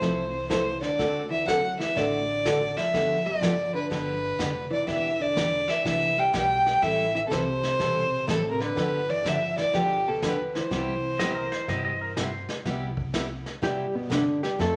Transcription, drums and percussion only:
0.01 brush sweep medium
0.01 kick soft
0.01 snare soft
0.50 kick soft
0.50 snare medium
0.50 hi-hat pedal medium
0.82 snare soft
0.99 brush sweep soft
0.99 kick soft
0.99 snare soft
1.48 kick soft
1.48 snare medium
1.48 hi-hat pedal medium
1.80 snare soft
1.97 brush sweep medium
1.97 kick soft
1.97 snare soft
2.45 kick soft
2.45 snare medium
2.45 hi-hat pedal medium
2.78 snare soft
2.94 brush sweep medium
2.94 kick soft
2.94 snare soft
3.42 kick soft
3.42 snare medium
3.42 hi-hat pedal medium
3.91 brush sweep medium
3.91 kick soft
3.91 snare soft
4.40 kick soft
4.40 snare medium
4.40 hi-hat pedal medium
4.88 brush sweep soft
4.88 kick soft
4.88 snare soft
5.37 kick soft
5.37 snare medium
5.37 hi-hat pedal medium
5.69 snare soft
5.85 brush sweep soft
5.85 kick soft
5.85 snare soft
6.33 kick soft
6.33 snare medium
6.33 hi-hat pedal medium
6.66 snare soft
6.82 brush sweep soft
6.82 kick soft
6.82 snare soft
7.31 kick soft
7.31 snare medium
7.31 hi-hat pedal medium
7.63 snare soft
7.80 brush sweep soft
7.80 kick soft
7.80 snare soft
8.28 kick soft
8.28 snare medium
8.28 hi-hat pedal medium
8.60 snare soft
8.77 brush sweep soft
8.77 kick soft
8.77 snare soft
9.25 kick soft
9.25 snare medium
9.25 hi-hat pedal medium
9.57 snare soft
9.73 brush sweep medium
9.73 kick soft
9.73 snare soft
10.22 kick soft
10.22 snare medium
10.22 hi-hat pedal medium
10.55 snare soft
10.71 brush sweep soft
10.71 kick soft
10.71 snare soft
11.19 kick soft
11.19 snare medium
11.19 hi-hat pedal medium
11.52 snare soft
11.68 brush sweep soft
11.68 kick soft
11.68 snare soft
12.17 kick soft
12.17 snare medium
12.17 hi-hat pedal medium
12.49 snare soft
12.65 brush sweep medium
12.65 kick soft
12.65 snare soft
12.97 kick medium
13.14 kick soft
13.14 snare medium
13.14 hi-hat pedal medium
13.46 snare soft
13.62 brush sweep soft
13.62 kick soft
13.62 snare soft
14.11 kick soft
14.11 snare medium
14.11 hi-hat pedal medium
14.43 snare soft
14.59 brush sweep soft
14.59 kick soft
14.59 snare soft

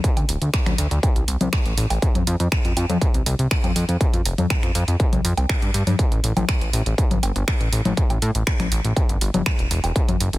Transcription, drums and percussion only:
0.04 kick loud
0.04 closed hi-hat medium
0.17 closed hi-hat soft
0.17 low woodblock medium
0.29 open hi-hat loud
0.42 closed hi-hat soft
0.54 finger snap loud
0.54 kick loud
0.54 closed hi-hat medium
0.66 finger snap soft
0.66 closed hi-hat soft
0.66 low conga medium
0.78 open hi-hat loud
0.91 closed hi-hat soft
1.03 kick loud
1.03 closed hi-hat medium
1.03 low woodblock medium
1.16 closed hi-hat soft
1.28 open hi-hat loud
1.41 closed hi-hat soft
1.41 low conga medium
1.53 finger snap loud
1.53 kick loud
1.53 closed hi-hat soft
1.66 closed hi-hat soft
1.78 open hi-hat loud
1.90 open hi-hat medium
1.90 low woodblock medium
2.02 kick loud
2.02 closed hi-hat medium
2.15 closed hi-hat soft
2.15 low conga medium
2.27 open hi-hat loud
2.40 closed hi-hat soft
2.52 finger snap loud
2.52 kick loud
2.52 closed hi-hat medium
2.65 closed hi-hat soft
2.77 open hi-hat loud
2.77 low woodblock medium
2.90 closed hi-hat soft
2.90 low conga medium
3.02 kick loud
3.02 closed hi-hat medium
3.14 closed hi-hat soft
3.26 open hi-hat loud
3.39 closed hi-hat soft
3.51 finger snap loud
3.51 kick loud
3.51 closed hi-hat soft
3.64 closed hi-hat soft
3.64 low conga medium
3.64 low woodblock medium
3.76 open hi-hat loud
3.89 closed hi-hat soft
4.01 kick loud
4.01 closed hi-hat medium
4.14 closed hi-hat soft
4.25 open hi-hat loud
4.38 closed hi-hat soft
4.38 low conga loud
4.50 finger snap loud
4.50 kick loud
4.50 closed hi-hat medium
4.50 low woodblock medium
4.63 finger snap soft
4.63 closed hi-hat soft
4.75 open hi-hat loud
4.88 closed hi-hat soft
5.00 kick loud
5.00 closed hi-hat medium
5.13 closed hi-hat soft
5.13 low conga loud
5.25 open hi-hat loud
5.37 closed hi-hat soft
5.37 low woodblock medium
5.49 finger snap loud
5.49 kick loud
5.49 closed hi-hat soft
5.62 closed hi-hat soft
5.74 open hi-hat loud
5.87 open hi-hat medium
5.87 low conga medium
5.99 kick loud
5.99 closed hi-hat medium
6.12 closed hi-hat soft
6.24 open hi-hat loud
6.37 closed hi-hat soft
6.37 low conga loud
6.37 low woodblock medium
6.49 finger snap loud
6.49 kick loud
6.49 closed hi-hat medium
6.61 closed hi-hat soft
6.73 open hi-hat loud
6.86 closed hi-hat soft
6.98 kick loud
6.98 closed hi-hat medium
7.11 closed hi-hat soft
7.11 low conga loud
7.23 open hi-hat loud
7.23 low woodblock medium
7.36 closed hi-hat soft
7.48 finger snap loud
7.48 kick loud
7.48 closed hi-hat soft
7.61 closed hi-hat soft
7.73 open hi-hat loud
7.85 closed hi-hat soft
7.85 low conga loud
7.97 kick loud
7.97 closed hi-hat medium
8.10 closed hi-hat soft
8.10 low woodblock medium
8.22 open hi-hat loud
8.35 closed hi-hat soft
8.47 finger snap loud
8.47 kick loud
8.47 closed hi-hat medium
8.60 finger snap soft
8.60 closed hi-hat soft
8.60 low conga loud
8.72 open hi-hat loud
8.85 closed hi-hat soft
8.97 kick loud
8.97 closed hi-hat medium
8.97 low woodblock medium
9.09 closed hi-hat soft
9.21 open hi-hat loud
9.34 closed hi-hat soft
9.34 low conga loud
9.46 finger snap loud
9.46 kick loud
9.46 closed hi-hat soft
9.59 closed hi-hat soft
9.71 open hi-hat loud
9.84 open hi-hat medium
9.84 low woodblock medium
9.96 kick loud
9.96 closed hi-hat medium
10.09 closed hi-hat soft
10.09 low conga loud
10.20 open hi-hat loud
10.33 closed hi-hat soft

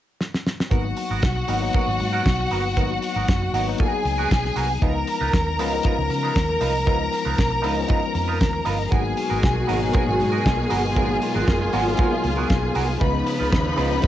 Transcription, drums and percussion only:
0.21 snare medium
0.34 snare medium
0.47 snare medium
0.60 snare medium
0.71 kick medium
0.71 closed hi-hat medium
0.96 open hi-hat medium
1.22 kick loud
1.22 snare loud
1.22 closed hi-hat medium
1.48 open hi-hat medium
1.73 kick loud
1.73 closed hi-hat medium
2.00 open hi-hat soft
2.26 kick loud
2.26 snare loud
2.26 closed hi-hat medium
2.50 open hi-hat medium
2.77 kick medium
2.77 closed hi-hat medium
3.02 open hi-hat medium
3.28 kick loud
3.28 snare loud
3.28 closed hi-hat medium
3.54 open hi-hat medium
3.78 kick loud
3.78 closed hi-hat medium
4.05 open hi-hat soft
4.31 kick loud
4.31 snare loud
4.31 closed hi-hat medium
4.46 snare soft
4.56 open hi-hat medium
4.82 kick loud
4.82 closed hi-hat medium
5.07 open hi-hat medium
5.33 kick loud
5.33 snare loud
5.33 closed hi-hat medium
5.59 open hi-hat medium
5.83 kick loud
5.83 closed hi-hat medium
6.10 open hi-hat soft
6.36 kick loud
6.36 snare loud
6.36 closed hi-hat medium
6.61 open hi-hat medium
6.87 kick medium
6.87 closed hi-hat medium
7.13 open hi-hat medium
7.38 kick loud
7.38 snare loud
7.38 closed hi-hat medium
7.64 open hi-hat medium
7.88 kick loud
7.88 closed hi-hat medium
8.15 open hi-hat soft
8.41 kick loud
8.41 snare loud
8.41 closed hi-hat medium
8.65 open hi-hat medium
8.92 kick medium
8.92 closed hi-hat medium
9.17 open hi-hat medium
9.43 kick loud
9.43 snare loud
9.43 closed hi-hat medium
9.69 open hi-hat medium
9.93 kick loud
9.93 closed hi-hat medium
10.20 open hi-hat soft
10.46 kick loud
10.46 snare loud
10.46 closed hi-hat medium
10.70 open hi-hat medium
10.96 kick medium
10.96 closed hi-hat medium
11.22 open hi-hat medium
11.48 kick loud
11.48 snare loud
11.48 closed hi-hat medium
11.73 open hi-hat medium
11.97 kick loud
11.97 closed hi-hat medium
12.24 open hi-hat soft
12.50 kick loud
12.50 snare loud
12.50 closed hi-hat medium
12.75 open hi-hat medium
13.01 kick loud
13.01 closed hi-hat medium
13.27 open hi-hat medium
13.52 kick loud
13.52 snare loud
13.52 closed hi-hat medium
13.77 open hi-hat medium
14.02 kick loud
14.02 closed hi-hat medium

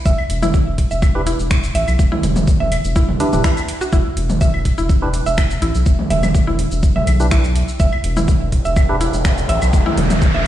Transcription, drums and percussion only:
0.06 kick loud
0.06 shaker medium
0.18 claves medium
0.30 open hi-hat loud
0.43 high tom medium
0.43 shaker soft
0.54 kick loud
0.54 shaker soft
0.78 kick medium
0.78 open hi-hat loud
0.91 shaker soft
1.02 kick loud
1.02 claves medium
1.02 shaker soft
1.27 open hi-hat loud
1.27 shaker soft
1.39 shaker soft
1.51 finger snap loud
1.51 kick loud
1.51 shaker soft
1.64 shaker soft
1.75 open hi-hat medium
1.88 claves medium
1.88 shaker soft
1.99 kick loud
1.99 shaker medium
2.12 high tom medium
2.23 open hi-hat medium
2.23 mid tom medium
2.23 shaker soft
2.36 high tom medium
2.36 shaker soft
2.47 kick loud
2.47 shaker medium
2.60 high tom medium
2.72 open hi-hat medium
2.72 claves medium
2.85 shaker soft
2.96 kick loud
2.96 shaker soft
3.09 mid tom medium
3.20 open hi-hat medium
3.20 shaker soft
3.33 mid tom medium
3.33 shaker soft
3.44 finger snap medium
3.44 kick loud
3.44 shaker soft
3.57 claves medium
3.57 shaker soft
3.68 open hi-hat loud
3.81 shaker soft
3.93 kick loud
3.93 shaker soft
4.17 open hi-hat medium
4.30 high tom medium
4.30 shaker soft
4.41 kick loud
4.41 shaker medium
4.54 claves medium
4.65 kick medium
4.65 open hi-hat medium
4.78 shaker soft
4.89 kick loud
4.89 shaker medium
5.14 open hi-hat medium
5.14 shaker soft
5.26 shaker soft
5.38 finger snap loud
5.38 kick loud
5.38 claves medium
5.38 shaker soft
5.51 shaker soft
5.62 open hi-hat medium
5.75 shaker soft
5.86 kick loud
5.86 shaker soft
5.99 high tom medium
6.10 open hi-hat medium
6.10 mid tom medium
6.23 high tom medium
6.23 claves medium
6.23 shaker soft
6.35 kick loud
6.35 shaker medium
6.47 high tom soft
6.59 open hi-hat medium
6.72 shaker soft
6.83 kick loud
6.83 shaker soft
6.96 mid tom medium
7.07 open hi-hat medium
7.07 claves medium
7.07 shaker soft
7.20 shaker soft
7.31 finger snap medium
7.31 kick loud
7.31 shaker medium
7.44 shaker soft
7.56 open hi-hat medium
7.68 shaker soft
7.80 kick loud
7.80 shaker medium
7.93 claves medium
8.04 open hi-hat medium
8.17 high tom medium
8.17 shaker soft
8.28 kick loud
8.28 shaker medium
8.52 kick medium
8.52 open hi-hat medium
8.65 shaker soft
8.76 kick loud
8.76 claves medium
8.76 shaker medium
9.01 open hi-hat medium
9.01 shaker soft
9.13 shaker soft
9.25 finger snap loud
9.25 kick loud
9.25 shaker medium
9.38 shaker soft
9.49 open hi-hat medium
9.62 claves medium
9.62 shaker soft
9.73 kick loud
9.73 shaker medium
9.86 high tom medium
9.97 open hi-hat medium
9.97 mid tom medium
10.10 open hi-hat soft
10.10 high tom medium
10.10 shaker soft
10.22 kick loud
10.22 shaker medium
10.35 high tom soft

